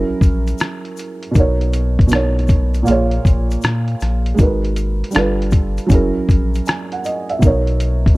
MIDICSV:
0, 0, Header, 1, 4, 480
1, 0, Start_track
1, 0, Tempo, 759494
1, 854, Time_signature, 4, 2, 24, 8
1, 5163, End_track
2, 0, Start_track
2, 0, Title_t, "Felt piano"
2, 0, Program_c, 0, 0
2, 0, Control_c, 0, 64, 127
2, 0, Note_on_c, 0, 54, 86
2, 0, Note_on_c, 0, 61, 85
2, 0, Note_on_c, 0, 64, 87
2, 0, Note_on_c, 0, 68, 80
2, 0, Note_on_c, 0, 70, 98
2, 764, Note_off_c, 0, 54, 0
2, 771, Note_off_c, 0, 61, 0
2, 777, Note_off_c, 0, 64, 0
2, 783, Note_off_c, 0, 68, 0
2, 790, Note_off_c, 0, 70, 0
2, 829, Note_on_c, 0, 47, 88
2, 842, Note_on_c, 0, 59, 79
2, 855, Note_on_c, 0, 63, 78
2, 862, Control_c, 0, 64, 0
2, 866, Note_on_c, 0, 70, 79
2, 882, Note_on_c, 0, 73, 88
2, 963, Control_c, 0, 64, 127
2, 1283, Note_off_c, 0, 47, 0
2, 1289, Note_off_c, 0, 59, 0
2, 1296, Note_off_c, 0, 63, 0
2, 1302, Note_off_c, 0, 70, 0
2, 1310, Note_off_c, 0, 73, 0
2, 1310, Note_on_c, 0, 47, 88
2, 1322, Note_on_c, 0, 59, 74
2, 1334, Note_on_c, 0, 63, 82
2, 1348, Note_on_c, 0, 70, 74
2, 1360, Note_on_c, 0, 73, 87
2, 1787, Note_on_c, 0, 46, 91
2, 1800, Note_on_c, 0, 58, 91
2, 1802, Note_off_c, 0, 47, 0
2, 1808, Note_off_c, 0, 59, 0
2, 1814, Note_off_c, 0, 63, 0
2, 1814, Note_on_c, 0, 65, 89
2, 1821, Note_off_c, 0, 70, 0
2, 1823, Control_c, 0, 64, 0
2, 1825, Note_on_c, 0, 68, 83
2, 1827, Note_off_c, 0, 73, 0
2, 1839, Note_on_c, 0, 73, 98
2, 1940, Control_c, 0, 64, 127
2, 2683, Note_off_c, 0, 46, 0
2, 2690, Note_off_c, 0, 58, 0
2, 2697, Note_off_c, 0, 65, 0
2, 2702, Note_off_c, 0, 68, 0
2, 2709, Note_off_c, 0, 73, 0
2, 2746, Note_on_c, 0, 56, 87
2, 2759, Note_on_c, 0, 63, 74
2, 2772, Note_on_c, 0, 66, 73
2, 2782, Control_c, 0, 64, 0
2, 2783, Note_on_c, 0, 70, 76
2, 2796, Note_on_c, 0, 71, 80
2, 2896, Control_c, 0, 64, 127
2, 3202, Note_off_c, 0, 56, 0
2, 3208, Note_off_c, 0, 63, 0
2, 3214, Note_off_c, 0, 66, 0
2, 3220, Note_off_c, 0, 70, 0
2, 3226, Note_off_c, 0, 71, 0
2, 3228, Note_on_c, 0, 55, 79
2, 3240, Note_on_c, 0, 62, 73
2, 3252, Note_on_c, 0, 65, 76
2, 3262, Control_c, 0, 64, 0
2, 3264, Note_on_c, 0, 69, 82
2, 3276, Note_on_c, 0, 71, 87
2, 3386, Control_c, 0, 64, 127
2, 3707, Note_on_c, 0, 54, 94
2, 3720, Note_on_c, 0, 61, 92
2, 3721, Note_off_c, 0, 55, 0
2, 3727, Note_off_c, 0, 62, 0
2, 3733, Note_off_c, 0, 65, 0
2, 3733, Note_on_c, 0, 64, 76
2, 3739, Note_off_c, 0, 69, 0
2, 3743, Control_c, 0, 64, 0
2, 3745, Note_off_c, 0, 71, 0
2, 3746, Note_on_c, 0, 68, 92
2, 3757, Note_on_c, 0, 70, 95
2, 3860, Control_c, 0, 64, 127
2, 4217, Note_on_c, 0, 80, 62
2, 4365, Note_off_c, 0, 80, 0
2, 4376, Note_on_c, 0, 78, 66
2, 4452, Note_off_c, 0, 78, 0
2, 4456, Note_on_c, 0, 75, 70
2, 4603, Note_off_c, 0, 54, 0
2, 4605, Note_off_c, 0, 75, 0
2, 4610, Note_off_c, 0, 61, 0
2, 4613, Note_on_c, 0, 76, 69
2, 4616, Note_off_c, 0, 64, 0
2, 4623, Note_off_c, 0, 68, 0
2, 4628, Note_off_c, 0, 70, 0
2, 4670, Note_on_c, 0, 47, 84
2, 4681, Note_on_c, 0, 59, 78
2, 4692, Note_on_c, 0, 63, 73
2, 4702, Control_c, 0, 64, 0
2, 4707, Note_on_c, 0, 70, 79
2, 4719, Note_on_c, 0, 73, 92
2, 4793, Control_c, 0, 64, 127
2, 4840, Note_off_c, 0, 76, 0
2, 5123, Note_off_c, 0, 47, 0
2, 5129, Note_off_c, 0, 59, 0
2, 5134, Note_off_c, 0, 63, 0
2, 5142, Note_off_c, 0, 70, 0
2, 5148, Note_off_c, 0, 73, 0
2, 5163, End_track
3, 0, Start_track
3, 0, Title_t, "Sub bass"
3, 0, Program_c, 1, 38
3, 59, Note_on_c, 1, 34, 47
3, 90, Note_off_c, 1, 34, 0
3, 139, Note_on_c, 1, 34, 77
3, 338, Note_off_c, 1, 34, 0
3, 860, Note_on_c, 1, 35, 111
3, 1792, Note_off_c, 1, 35, 0
3, 1820, Note_on_c, 1, 34, 87
3, 2019, Note_off_c, 1, 34, 0
3, 2058, Note_on_c, 1, 34, 86
3, 2258, Note_off_c, 1, 34, 0
3, 2300, Note_on_c, 1, 46, 107
3, 2499, Note_off_c, 1, 46, 0
3, 2540, Note_on_c, 1, 34, 89
3, 2739, Note_off_c, 1, 34, 0
3, 2778, Note_on_c, 1, 32, 103
3, 3180, Note_off_c, 1, 32, 0
3, 3258, Note_on_c, 1, 31, 109
3, 3660, Note_off_c, 1, 31, 0
3, 3733, Note_on_c, 1, 30, 104
3, 3866, Note_off_c, 1, 30, 0
3, 3897, Note_on_c, 1, 34, 45
3, 3928, Note_off_c, 1, 34, 0
3, 3978, Note_on_c, 1, 34, 87
3, 4178, Note_off_c, 1, 34, 0
3, 4695, Note_on_c, 1, 35, 107
3, 5163, Note_off_c, 1, 35, 0
3, 5163, End_track
4, 0, Start_track
4, 0, Title_t, "Drums"
4, 134, Note_on_c, 9, 36, 77
4, 138, Note_on_c, 9, 82, 46
4, 147, Note_on_c, 9, 42, 62
4, 197, Note_off_c, 9, 36, 0
4, 202, Note_off_c, 9, 82, 0
4, 210, Note_off_c, 9, 42, 0
4, 297, Note_on_c, 9, 82, 44
4, 301, Note_on_c, 9, 42, 49
4, 360, Note_off_c, 9, 82, 0
4, 364, Note_off_c, 9, 42, 0
4, 367, Note_on_c, 9, 82, 60
4, 381, Note_on_c, 9, 42, 78
4, 387, Note_on_c, 9, 37, 102
4, 430, Note_off_c, 9, 82, 0
4, 444, Note_off_c, 9, 42, 0
4, 451, Note_off_c, 9, 37, 0
4, 537, Note_on_c, 9, 42, 34
4, 601, Note_off_c, 9, 42, 0
4, 612, Note_on_c, 9, 82, 52
4, 628, Note_on_c, 9, 42, 61
4, 675, Note_off_c, 9, 82, 0
4, 691, Note_off_c, 9, 42, 0
4, 775, Note_on_c, 9, 42, 41
4, 838, Note_off_c, 9, 42, 0
4, 851, Note_on_c, 9, 82, 64
4, 855, Note_on_c, 9, 36, 109
4, 860, Note_on_c, 9, 42, 75
4, 914, Note_off_c, 9, 82, 0
4, 918, Note_off_c, 9, 36, 0
4, 923, Note_off_c, 9, 42, 0
4, 1018, Note_on_c, 9, 42, 35
4, 1082, Note_off_c, 9, 42, 0
4, 1093, Note_on_c, 9, 82, 42
4, 1096, Note_on_c, 9, 42, 80
4, 1157, Note_off_c, 9, 82, 0
4, 1159, Note_off_c, 9, 42, 0
4, 1258, Note_on_c, 9, 36, 91
4, 1270, Note_on_c, 9, 42, 47
4, 1319, Note_on_c, 9, 82, 74
4, 1321, Note_off_c, 9, 36, 0
4, 1333, Note_off_c, 9, 42, 0
4, 1338, Note_on_c, 9, 42, 84
4, 1346, Note_on_c, 9, 37, 121
4, 1382, Note_off_c, 9, 82, 0
4, 1401, Note_off_c, 9, 42, 0
4, 1409, Note_off_c, 9, 37, 0
4, 1510, Note_on_c, 9, 42, 38
4, 1564, Note_on_c, 9, 82, 46
4, 1573, Note_off_c, 9, 42, 0
4, 1574, Note_on_c, 9, 36, 92
4, 1578, Note_on_c, 9, 42, 70
4, 1627, Note_off_c, 9, 82, 0
4, 1637, Note_off_c, 9, 36, 0
4, 1642, Note_off_c, 9, 42, 0
4, 1732, Note_on_c, 9, 82, 52
4, 1734, Note_on_c, 9, 42, 50
4, 1795, Note_off_c, 9, 82, 0
4, 1798, Note_off_c, 9, 42, 0
4, 1807, Note_on_c, 9, 82, 61
4, 1820, Note_on_c, 9, 42, 90
4, 1870, Note_off_c, 9, 82, 0
4, 1883, Note_off_c, 9, 42, 0
4, 1968, Note_on_c, 9, 42, 35
4, 2031, Note_off_c, 9, 42, 0
4, 2054, Note_on_c, 9, 36, 75
4, 2057, Note_on_c, 9, 82, 45
4, 2066, Note_on_c, 9, 42, 62
4, 2117, Note_off_c, 9, 36, 0
4, 2120, Note_off_c, 9, 82, 0
4, 2129, Note_off_c, 9, 42, 0
4, 2216, Note_on_c, 9, 82, 43
4, 2223, Note_on_c, 9, 42, 48
4, 2279, Note_off_c, 9, 82, 0
4, 2285, Note_on_c, 9, 82, 60
4, 2286, Note_off_c, 9, 42, 0
4, 2299, Note_on_c, 9, 42, 85
4, 2305, Note_on_c, 9, 37, 105
4, 2348, Note_off_c, 9, 82, 0
4, 2362, Note_off_c, 9, 42, 0
4, 2368, Note_off_c, 9, 37, 0
4, 2451, Note_on_c, 9, 42, 31
4, 2514, Note_off_c, 9, 42, 0
4, 2530, Note_on_c, 9, 82, 50
4, 2542, Note_on_c, 9, 42, 67
4, 2544, Note_on_c, 9, 37, 35
4, 2593, Note_off_c, 9, 82, 0
4, 2605, Note_off_c, 9, 42, 0
4, 2607, Note_off_c, 9, 37, 0
4, 2693, Note_on_c, 9, 42, 46
4, 2756, Note_off_c, 9, 42, 0
4, 2767, Note_on_c, 9, 82, 65
4, 2773, Note_on_c, 9, 36, 103
4, 2778, Note_on_c, 9, 42, 71
4, 2830, Note_off_c, 9, 82, 0
4, 2836, Note_off_c, 9, 36, 0
4, 2841, Note_off_c, 9, 42, 0
4, 2936, Note_on_c, 9, 42, 33
4, 2999, Note_off_c, 9, 42, 0
4, 3010, Note_on_c, 9, 42, 74
4, 3012, Note_on_c, 9, 82, 42
4, 3074, Note_off_c, 9, 42, 0
4, 3075, Note_off_c, 9, 82, 0
4, 3185, Note_on_c, 9, 42, 52
4, 3231, Note_on_c, 9, 82, 74
4, 3249, Note_off_c, 9, 42, 0
4, 3253, Note_on_c, 9, 42, 81
4, 3261, Note_on_c, 9, 37, 116
4, 3295, Note_off_c, 9, 82, 0
4, 3316, Note_off_c, 9, 42, 0
4, 3325, Note_off_c, 9, 37, 0
4, 3425, Note_on_c, 9, 42, 38
4, 3482, Note_on_c, 9, 82, 47
4, 3488, Note_off_c, 9, 42, 0
4, 3491, Note_on_c, 9, 36, 89
4, 3494, Note_on_c, 9, 42, 72
4, 3545, Note_off_c, 9, 82, 0
4, 3554, Note_off_c, 9, 36, 0
4, 3557, Note_off_c, 9, 42, 0
4, 3649, Note_on_c, 9, 82, 49
4, 3653, Note_on_c, 9, 42, 48
4, 3712, Note_off_c, 9, 82, 0
4, 3716, Note_off_c, 9, 42, 0
4, 3726, Note_on_c, 9, 82, 69
4, 3728, Note_on_c, 9, 36, 93
4, 3739, Note_on_c, 9, 42, 93
4, 3789, Note_off_c, 9, 82, 0
4, 3791, Note_off_c, 9, 36, 0
4, 3802, Note_off_c, 9, 42, 0
4, 3973, Note_on_c, 9, 36, 72
4, 3976, Note_on_c, 9, 82, 45
4, 3987, Note_on_c, 9, 42, 66
4, 4037, Note_off_c, 9, 36, 0
4, 4040, Note_off_c, 9, 82, 0
4, 4050, Note_off_c, 9, 42, 0
4, 4136, Note_on_c, 9, 82, 45
4, 4143, Note_on_c, 9, 42, 47
4, 4199, Note_off_c, 9, 82, 0
4, 4206, Note_off_c, 9, 42, 0
4, 4209, Note_on_c, 9, 82, 67
4, 4222, Note_on_c, 9, 42, 85
4, 4228, Note_on_c, 9, 37, 99
4, 4272, Note_off_c, 9, 82, 0
4, 4285, Note_off_c, 9, 42, 0
4, 4291, Note_off_c, 9, 37, 0
4, 4372, Note_on_c, 9, 42, 35
4, 4436, Note_off_c, 9, 42, 0
4, 4451, Note_on_c, 9, 82, 51
4, 4462, Note_on_c, 9, 42, 59
4, 4514, Note_off_c, 9, 82, 0
4, 4525, Note_off_c, 9, 42, 0
4, 4610, Note_on_c, 9, 42, 43
4, 4673, Note_off_c, 9, 42, 0
4, 4689, Note_on_c, 9, 82, 66
4, 4692, Note_on_c, 9, 36, 112
4, 4694, Note_on_c, 9, 42, 74
4, 4752, Note_off_c, 9, 82, 0
4, 4755, Note_off_c, 9, 36, 0
4, 4757, Note_off_c, 9, 42, 0
4, 4849, Note_on_c, 9, 42, 32
4, 4912, Note_off_c, 9, 42, 0
4, 4930, Note_on_c, 9, 42, 79
4, 4933, Note_on_c, 9, 82, 41
4, 4994, Note_off_c, 9, 42, 0
4, 4997, Note_off_c, 9, 82, 0
4, 5095, Note_on_c, 9, 36, 89
4, 5103, Note_on_c, 9, 42, 54
4, 5158, Note_off_c, 9, 36, 0
4, 5163, Note_off_c, 9, 42, 0
4, 5163, End_track
0, 0, End_of_file